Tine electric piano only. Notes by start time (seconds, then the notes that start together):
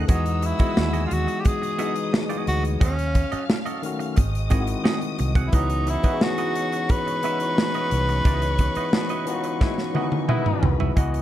Already playing: D#3 A3 C#4 G#4 A4
0.08 E3 G#3 D#4 F#4
0.59 G#3 B3 E4 F#4
1.78 E3 G#3 D#4 G#4
3.82 D#3 A3 C#4 F#4
4.50 D#3 G#3 C4 E4
4.61 F#4
5.52 E3 B3 D#4
5.56 F#4
6.03 E3 B3 D#4
6.07 F#4
6.13 G#4
7.22 E3 B3 D#4 E4
7.32 F#4
9.26 E3 B3 D#4 F4
9.36 F#4
9.93 D#3 B3 D#4 F#4
10.00 E3
10.95 E3 B3 F#4 D#5